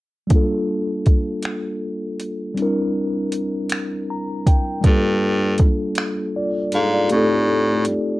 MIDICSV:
0, 0, Header, 1, 4, 480
1, 0, Start_track
1, 0, Key_signature, -2, "minor"
1, 0, Tempo, 754717
1, 198, Time_signature, 6, 3, 24, 8
1, 5214, End_track
2, 0, Start_track
2, 0, Title_t, "Tine electric piano"
2, 0, Program_c, 0, 4
2, 174, Note_on_c, 0, 55, 57
2, 188, Note_on_c, 0, 58, 55
2, 199, Note_on_c, 0, 62, 53
2, 212, Note_on_c, 0, 65, 52
2, 227, Note_on_c, 0, 69, 58
2, 304, Control_c, 0, 64, 127
2, 1600, Note_off_c, 0, 55, 0
2, 1607, Note_off_c, 0, 58, 0
2, 1613, Note_off_c, 0, 62, 0
2, 1619, Note_off_c, 0, 65, 0
2, 1619, Note_on_c, 0, 55, 57
2, 1627, Note_off_c, 0, 69, 0
2, 1629, Note_on_c, 0, 60, 54
2, 1645, Control_c, 0, 64, 0
2, 1646, Note_on_c, 0, 62, 55
2, 1658, Note_on_c, 0, 64, 52
2, 1669, Note_on_c, 0, 70, 65
2, 1771, Control_c, 0, 64, 127
2, 2610, Note_on_c, 0, 82, 47
2, 2827, Note_off_c, 0, 82, 0
2, 2844, Note_on_c, 0, 79, 58
2, 3043, Note_off_c, 0, 55, 0
2, 3048, Note_off_c, 0, 60, 0
2, 3056, Note_off_c, 0, 62, 0
2, 3058, Note_on_c, 0, 55, 62
2, 3062, Note_off_c, 0, 64, 0
2, 3064, Note_off_c, 0, 79, 0
2, 3068, Note_off_c, 0, 70, 0
2, 3071, Note_on_c, 0, 58, 56
2, 3083, Note_on_c, 0, 62, 53
2, 3086, Control_c, 0, 64, 0
2, 3096, Note_on_c, 0, 65, 56
2, 3109, Note_on_c, 0, 69, 66
2, 3183, Control_c, 0, 64, 127
2, 4028, Note_off_c, 0, 65, 0
2, 4034, Note_off_c, 0, 69, 0
2, 4046, Note_on_c, 0, 74, 49
2, 4050, Note_on_c, 0, 65, 38
2, 4270, Note_off_c, 0, 74, 0
2, 4272, Note_off_c, 0, 65, 0
2, 4291, Note_on_c, 0, 77, 61
2, 4296, Note_on_c, 0, 69, 47
2, 4399, Note_off_c, 0, 77, 0
2, 4401, Note_off_c, 0, 69, 0
2, 4414, Note_on_c, 0, 74, 52
2, 4416, Note_on_c, 0, 65, 42
2, 4483, Note_off_c, 0, 55, 0
2, 4489, Note_off_c, 0, 58, 0
2, 4495, Note_off_c, 0, 62, 0
2, 4505, Note_on_c, 0, 67, 60
2, 4519, Note_on_c, 0, 57, 56
2, 4526, Control_c, 0, 64, 0
2, 4531, Note_on_c, 0, 60, 56
2, 4544, Note_on_c, 0, 63, 58
2, 4555, Note_on_c, 0, 69, 63
2, 4626, Control_c, 0, 64, 127
2, 4634, Note_off_c, 0, 74, 0
2, 4636, Note_off_c, 0, 65, 0
2, 5214, Note_off_c, 0, 57, 0
2, 5214, Note_off_c, 0, 60, 0
2, 5214, Note_off_c, 0, 63, 0
2, 5214, Note_off_c, 0, 67, 0
2, 5214, Note_off_c, 0, 69, 0
2, 5214, End_track
3, 0, Start_track
3, 0, Title_t, "Baritone saxophone"
3, 0, Program_c, 1, 67
3, 3085, Note_on_c, 1, 43, 82
3, 3536, Note_off_c, 1, 43, 0
3, 3568, Note_on_c, 1, 44, 37
3, 3614, Note_off_c, 1, 44, 0
3, 4286, Note_on_c, 1, 44, 81
3, 4498, Note_off_c, 1, 44, 0
3, 4527, Note_on_c, 1, 45, 78
3, 4977, Note_off_c, 1, 45, 0
3, 5007, Note_on_c, 1, 43, 37
3, 5053, Note_off_c, 1, 43, 0
3, 5214, End_track
4, 0, Start_track
4, 0, Title_t, "Drums"
4, 193, Note_on_c, 9, 42, 52
4, 195, Note_on_c, 9, 36, 77
4, 257, Note_off_c, 9, 42, 0
4, 259, Note_off_c, 9, 36, 0
4, 674, Note_on_c, 9, 42, 51
4, 679, Note_on_c, 9, 36, 61
4, 737, Note_off_c, 9, 42, 0
4, 743, Note_off_c, 9, 36, 0
4, 906, Note_on_c, 9, 42, 53
4, 924, Note_on_c, 9, 26, 94
4, 970, Note_off_c, 9, 42, 0
4, 987, Note_off_c, 9, 26, 0
4, 1398, Note_on_c, 9, 42, 62
4, 1462, Note_off_c, 9, 42, 0
4, 1638, Note_on_c, 9, 42, 52
4, 1702, Note_off_c, 9, 42, 0
4, 2114, Note_on_c, 9, 42, 56
4, 2177, Note_off_c, 9, 42, 0
4, 2351, Note_on_c, 9, 42, 55
4, 2369, Note_on_c, 9, 26, 94
4, 2415, Note_off_c, 9, 42, 0
4, 2432, Note_off_c, 9, 26, 0
4, 2839, Note_on_c, 9, 36, 67
4, 2841, Note_on_c, 9, 42, 64
4, 2903, Note_off_c, 9, 36, 0
4, 2905, Note_off_c, 9, 42, 0
4, 3077, Note_on_c, 9, 42, 56
4, 3078, Note_on_c, 9, 36, 90
4, 3141, Note_off_c, 9, 42, 0
4, 3142, Note_off_c, 9, 36, 0
4, 3550, Note_on_c, 9, 42, 55
4, 3560, Note_on_c, 9, 36, 65
4, 3613, Note_off_c, 9, 42, 0
4, 3623, Note_off_c, 9, 36, 0
4, 3786, Note_on_c, 9, 42, 54
4, 3804, Note_on_c, 9, 26, 97
4, 3850, Note_off_c, 9, 42, 0
4, 3867, Note_off_c, 9, 26, 0
4, 4273, Note_on_c, 9, 42, 66
4, 4336, Note_off_c, 9, 42, 0
4, 4513, Note_on_c, 9, 42, 56
4, 4576, Note_off_c, 9, 42, 0
4, 4992, Note_on_c, 9, 42, 55
4, 5056, Note_off_c, 9, 42, 0
4, 5214, End_track
0, 0, End_of_file